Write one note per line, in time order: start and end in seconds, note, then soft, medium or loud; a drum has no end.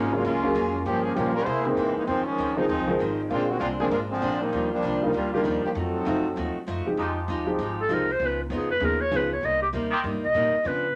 0.00 0.24 G#1 medium
0.00 0.14 F#3 medium
0.00 0.13 G#3 medium
0.00 0.13 A#3 medium
0.00 0.14 A#3 medium
0.00 0.13 C#4 medium
0.00 0.13 D#4 medium
0.00 0.15 F4 medium
0.00 0.15 G#4 medium
0.12 0.23 F#3 medium
0.12 0.23 G#3 medium
0.12 0.24 G#3 medium
0.12 0.23 A#3 medium
0.12 0.24 A#3 medium
0.12 0.24 C#4 medium
0.12 0.25 C#4 medium
0.12 0.24 F4 medium
0.12 0.24 F4 loud
0.24 0.54 C#2 loud
0.24 0.45 F#3 soft
0.24 0.82 G#3 medium
0.24 0.82 A#3 medium
0.24 0.45 A#3 medium
0.24 0.82 C#4 medium
0.24 0.82 F4 loud
0.24 0.46 F4 medium
0.24 0.46 G#4 medium
0.43 0.83 F#3 medium
0.43 0.83 G#3 medium
0.43 0.83 A#3 medium
0.43 0.84 C#4 medium
0.43 0.84 F4 medium
0.54 0.85 F2 loud
0.54 0.75 F#3 medium
0.54 0.75 A#3 medium
0.54 0.76 F4 medium
0.54 0.76 G#4 medium
0.85 1.06 G2 soft
0.85 1.15 G2 medium
0.85 1.06 F3 soft
0.85 1.01 F3 medium
0.85 1.02 A#3 medium
0.85 1.06 A#3 medium
0.85 1.02 C#4 medium
0.85 1.07 C#4 medium
0.85 1.05 G4 loud
1.03 1.14 F3 medium
1.03 1.14 A#3 medium
1.03 1.13 C#4 medium
1.03 1.16 G#4 medium
1.15 1.37 G2 medium
1.15 1.46 A#2 medium
1.15 1.35 F3 medium
1.15 1.33 F3 medium
1.15 1.37 F3 medium
1.15 1.33 G3 medium
1.15 1.35 A#3 medium
1.15 1.33 A#3 soft
1.15 1.37 A#3 medium
1.15 1.34 C#4 medium
1.15 1.33 C#4 medium
1.15 1.37 C#4 medium
1.15 1.34 F4 medium
1.15 1.35 G4 medium
1.34 1.46 G3 medium
1.34 1.46 C#4 medium
1.34 1.46 F4 medium
1.34 1.46 A#4 loud
1.45 1.67 C3 medium
1.45 1.76 C3 medium
1.45 1.67 G#3 medium
1.45 1.65 A#3 medium
1.45 1.68 A#3 medium
1.45 1.65 E4 medium
1.45 1.65 G#4 medium
1.45 1.65 C5 medium
1.50 1.68 E4 medium
1.66 1.95 E3 medium
1.66 2.06 E3 medium
1.66 1.95 G#3 medium
1.66 2.06 G#3 medium
1.66 1.94 A#3 medium
1.66 2.06 A#3 medium
1.66 1.96 C4 loud
1.66 2.06 C4 medium
1.66 2.06 D#4 medium
1.77 1.95 G#2 medium
1.77 1.97 C3 medium
1.77 1.98 G#3 medium
1.77 1.98 A#3 medium
1.77 1.99 E4 medium
1.95 2.07 E3 medium
1.95 2.06 G#3 medium
1.95 2.07 A#3 medium
1.95 2.07 D#4 medium
1.95 muted upright bass stroke soft
2.07 2.28 F2 soft
2.07 2.25 F2 medium
2.07 2.25 D#3 medium
2.07 2.28 D#3 soft
2.07 2.25 F3 medium
2.07 2.25 G#3 medium
2.07 2.29 G#3 soft
2.07 2.25 C4 loud
2.11 2.29 C4 soft
2.26 2.57 D#3 medium
2.26 2.57 F3 medium
2.26 2.57 G#3 medium
2.26 2.57 C#4 loud
2.26 muted upright bass stroke soft
2.38 2.68 D2 medium
2.38 2.58 F2 medium
2.38 2.59 D#3 medium
2.38 2.59 G#3 medium
2.38 2.60 C4 medium
2.57 2.68 D#3 medium
2.57 2.68 F3 medium
2.57 2.67 F3 medium
2.57 2.68 G#3 medium
2.57 2.68 C4 medium
2.57 2.68 D#4 medium
2.57 2.67 D#4 medium
2.68 2.79 D#2 medium
2.68 2.89 F2 soft
2.68 2.89 D#3 medium
2.68 3.01 F3 medium
2.68 3.02 G#3 medium
2.68 2.90 G#3 medium
2.68 3.02 C4 medium
2.68 2.90 C4 soft
2.68 3.01 D#4 loud
2.79 2.89 C2 medium
2.87 2.99 G#1 medium
2.87 3.28 D#3 medium
2.87 3.28 F3 medium
2.87 3.28 G#3 medium
2.87 3.28 C4 medium
2.87 3.28 D#4 medium
2.99 3.30 G#1 medium
2.99 3.20 F2 medium
2.99 3.20 D#3 medium
2.99 3.20 G#3 medium
2.99 3.21 C4 medium
3.30 3.60 A#1 medium
3.30 3.50 A#2 soft
3.30 3.47 D3 medium
3.30 3.47 G#3 medium
3.30 3.48 G#3 medium
3.30 3.51 G#3 soft
3.30 3.47 A#3 medium
3.30 3.47 C4 medium
3.30 3.48 C4 medium
3.30 3.51 C4 medium
3.30 3.48 D4 medium
3.30 3.47 F4 medium
3.30 3.48 F4 loud
3.34 3.52 D4 medium
3.49 3.61 D#3 medium
3.49 3.58 G#3 medium
3.49 3.59 C4 medium
3.49 3.61 F#4 loud
3.59 3.90 C2 medium
3.59 3.80 A#2 medium
3.59 3.68 G#3 medium
3.59 3.81 G#3 medium
3.59 3.69 C4 medium
3.59 3.81 C4 medium
3.59 3.69 D4 medium
3.59 3.82 D4 medium
3.59 3.69 F4 medium
3.80 3.90 D3 medium
3.80 3.86 F3 medium
3.80 3.90 G#3 medium
3.80 3.91 A#3 medium
3.80 3.91 C4 medium
3.80 3.86 C4 medium
3.80 3.86 D4 medium
3.80 3.91 G#4 medium
3.80 3.86 G#4 loud
3.89 4.21 G#1 loud
3.89 4.10 A#2 soft
3.89 3.99 G#3 medium
3.89 4.11 G#3 medium
3.89 4.12 C4 soft
3.89 3.99 D4 medium
3.89 4.12 D4 medium
3.89 4.00 F4 medium
3.89 4.00 A#4 medium
4.10 4.39 D3 medium
4.10 4.38 F3 medium
4.10 4.38 G#3 medium
4.10 4.39 C4 loud
4.21 4.52 A#1 medium
4.21 4.42 A#2 medium
4.21 4.42 G#3 medium
4.21 4.42 C4 medium
4.21 4.43 D4 medium
4.40 4.71 F3 medium
4.40 4.71 G3 medium
4.40 4.70 A#3 medium
4.40 4.71 D#4 loud
4.52 4.82 D#2 medium
4.52 4.73 D#3 soft
4.52 4.73 G3 medium
4.52 4.74 D4 soft
4.52 4.74 F4 soft
4.72 5.00 F3 medium
4.72 5.00 G3 medium
4.72 5.00 A#3 medium
4.72 5.01 D4 loud
4.82 5.13 C2 medium
4.82 5.03 D#3 medium
4.82 5.04 G3 medium
4.82 5.04 D4 medium
4.82 5.04 F4 medium
5.02 5.13 D#3 medium
5.02 5.14 F3 medium
5.02 5.13 G3 medium
5.02 5.14 G3 medium
5.02 5.13 A#3 medium
5.02 5.13 D4 medium
5.02 5.14 D#4 medium
5.02 5.13 F4 medium
5.13 5.44 D2 medium
5.13 5.33 D#3 medium
5.13 5.34 G3 medium
5.13 5.32 G3 medium
5.13 5.32 A#3 medium
5.13 5.32 D4 medium
5.13 5.35 D4 medium
5.13 5.32 F4 medium
5.13 5.35 F4 medium
5.33 5.73 D#3 medium
5.33 5.44 G3 medium
5.33 5.73 G3 medium
5.33 5.44 A#3 medium
5.33 5.73 A#3 medium
5.33 5.44 D4 medium
5.33 5.74 D4 medium
5.33 5.44 F4 medium
5.33 5.73 G4 medium
5.43 5.62 D#2 medium
5.43 5.64 D#3 medium
5.43 5.63 F3 medium
5.43 5.64 G3 medium
5.43 5.63 A#3 medium
5.43 5.65 D4 medium
5.43 5.64 D#4 medium
5.43 5.65 F4 medium
5.64 5.70 F3 medium
5.64 5.70 A#3 medium
5.64 5.69 D4 medium
5.64 5.70 G4 medium
5.64 muted upright bass stroke soft
5.75 6.05 F2 medium
5.75 5.95 F3 soft
5.75 6.64 F#3 medium
5.75 5.95 A3 medium
5.75 6.64 C4 medium
5.75 5.96 D#4 soft
5.75 6.64 D#4 medium
5.75 5.96 F#4 medium
5.75 6.64 A4 medium
6.05 6.36 F#2 medium
6.05 6.25 F3 medium
6.05 6.23 F#3 medium
6.05 6.26 A3 medium
6.05 6.23 A3 medium
6.05 6.23 C4 medium
6.05 6.26 D#4 medium
6.05 6.23 D#4 medium
6.05 6.23 F4 medium
6.05 6.27 F#4 medium
6.36 6.54 D#2 medium
6.36 6.56 F3 medium
6.36 6.57 A3 medium
6.36 6.57 D#4 medium
6.36 6.58 F#4 medium
6.56 muted upright bass stroke soft
6.67 6.85 F#2 medium
6.67 6.87 F3 medium
6.67 6.87 A3 medium
6.67 6.88 D#4 medium
6.67 6.88 F#4 medium
6.86 6.96 F3 medium
6.86 6.96 G#3 medium
6.86 6.96 C4 medium
6.86 6.97 D#4 medium
6.86 6.97 G4 medium
6.86 muted upright bass stroke soft
6.97 7.27 F2 medium
6.97 7.82 F3 medium
6.97 7.18 F3 soft
6.97 7.82 G#3 medium
6.97 7.18 G#3 medium
6.97 7.82 D#4 medium
6.97 7.19 D#4 medium
6.97 7.82 G4 medium
7.01 7.19 G4 medium
7.28 7.58 D#2 medium
7.28 7.48 F3 medium
7.28 7.48 G#3 medium
7.28 7.49 D#4 medium
7.28 7.49 G4 medium
7.46 7.57 F3 medium
7.46 7.57 G#3 medium
7.46 7.57 C4 medium
7.46 7.58 D#4 medium
7.46 7.57 G4 medium
7.58 7.88 G#1 medium
7.58 7.79 F3 medium
7.58 7.79 G#3 medium
7.58 7.80 D#4 medium
7.58 7.80 G4 medium
7.81 7.94 A4 medium
7.89 8.19 C2 medium
7.89 8.06 F3 medium
7.89 8.09 F3 medium
7.89 8.06 G#3 medium
7.89 8.10 G#3 medium
7.89 8.06 C4 medium
7.89 8.06 D#4 medium
7.89 8.10 D#4 medium
7.89 8.06 G4 medium
7.89 8.10 G4 medium
7.93 8.13 A#4 medium
8.12 8.27 C5 loud
8.19 8.49 C#2 medium
8.19 8.40 C#3 soft
8.19 8.40 F3 soft
8.19 8.41 B3 medium
8.19 8.41 D#4 medium
8.25 8.41 B4 medium
8.43 8.57 D#4 soft
8.50 8.80 F2 medium
8.50 8.70 C#3 medium
8.50 8.71 F3 medium
8.50 8.71 B3 medium
8.50 8.71 D#4 medium
8.55 8.70 G#4 medium
8.71 8.87 B4 loud
8.80 9.10 D#2 medium
8.80 9.01 C#3 soft
8.80 8.98 F3 medium
8.80 9.01 F3 soft
8.80 8.98 B3 medium
8.80 9.02 B3 medium
8.80 8.98 C#4 soft
8.80 8.98 D#4 soft
8.80 9.02 D#4 medium
8.80 8.98 G#4 medium
8.85 9.03 A#4 medium
9.01 9.18 C#5 loud
9.11 9.41 C#2 loud
9.11 9.32 C#3 medium
9.11 9.28 F3 soft
9.11 9.32 F3 medium
9.11 9.28 B3 soft
9.11 9.32 B3 medium
9.11 9.28 C#4 soft
9.11 9.29 D#4 soft
9.11 9.33 D#4 medium
9.11 9.29 G#4 medium
9.16 9.32 B4 loud
9.33 9.47 C#5 medium
9.41 9.72 C2 medium
9.41 9.62 C3 soft
9.41 9.62 G3 medium
9.41 9.63 A#3 soft
9.41 9.63 D#4 soft
9.45 9.61 D#5 medium
9.62 9.69 G4 medium
9.73 10.03 D#2 medium
9.73 9.93 C3 medium
9.73 9.93 G3 medium
9.73 9.94 A#3 medium
9.73 9.94 D#4 medium
9.90 9.99 D#3 medium
9.90 9.99 A#3 medium
9.90 9.99 C4 medium
9.90 9.99 G4 loud
10.03 10.15 G2 medium
10.03 10.23 C3 soft
10.03 10.24 G3 medium
10.03 10.24 A#3 medium
10.03 10.25 D#4 medium
10.14 10.23 D#2 medium
10.24 10.33 C2 medium
10.24 10.69 D#5 loud
10.34 10.52 A#2 medium
10.34 10.54 C3 medium
10.34 10.54 G3 medium
10.34 10.55 A#3 medium
10.34 10.55 D#4 medium
10.54 muted upright bass stroke soft
10.63 10.84 C#3 soft
10.63 10.95 C#3 medium
10.63 10.85 F3 soft
10.63 10.85 B3 medium
10.63 10.86 D4 medium
10.63 10.95 B4 medium